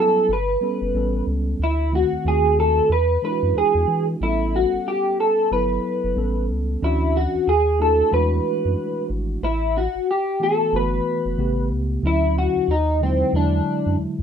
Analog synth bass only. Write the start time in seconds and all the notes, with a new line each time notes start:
0.29 G1
0.82 F#1
0.94 A1
1.27 C#2
1.59 D2
2.12 D#2
2.25 D#2
2.89 E2
3.43 F#2
3.55 E2
3.75 E2
3.88 E3
4.21 A1
4.73 G1
5.51 G1
6.04 F#1
6.16 A1
6.49 C#2
6.83 D2
7.35 D#2
7.47 D#2
8.13 E2
8.65 F#2
9.10 G#1
9.43 A1
9.95 G1
10.73 G1
11.25 F#1
11.38 A1
11.71 C#2
12.03 D2
12.56 D#2
12.68 D#2
13.33 E2
13.86 F#2
13.99 E2
14.19 E2